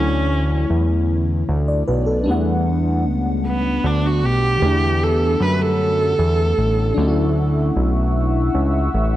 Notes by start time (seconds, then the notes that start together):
Already playing: D2 D3 F#3 A3 C#4 E4
0.70 E2
1.49 D2
1.68 D5
1.88 B1 B4
2.06 A4
2.24 E2 G3 A3 D4
2.29 B3 F#5
3.06 C#2
3.48 B3
3.84 D2 D4
4.06 F#4
4.23 B1 G4
4.58 D3 G4
4.62 E2 A3 B3 D4
5.04 A4
5.40 F#2 B4
5.61 A4
6.19 E2
6.58 A1
6.94 D2 F#3 A3 D4 E5 F#5 C#6 E6
7.00 C#4 D#4
7.08 E4
7.76 B1
8.54 C#2
8.94 A1